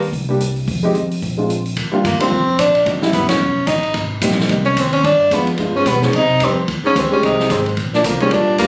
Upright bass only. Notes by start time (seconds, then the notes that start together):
0.13 C2
0.68 F2
0.94 F2
1.22 A#1
1.76 D#2
2.04 G2
2.19 muted upright bass stroke
2.31 F2
2.59 A#1
2.86 A1
3.13 G1
3.39 E1
3.56 muted upright bass stroke
3.67 A1
3.94 G#1
4.22 A#1
4.49 C2
4.76 D#2
5.04 G2
5.31 F2
5.58 G2
5.86 B2
6.13 C3
6.41 F2
6.68 D#2
6.83 muted upright bass stroke
6.95 D2
7.23 C2
7.50 G#1
7.77 A#1
8.04 C2
8.20 muted upright bass stroke
8.31 D#2
8.48 muted upright bass stroke
8.59 D2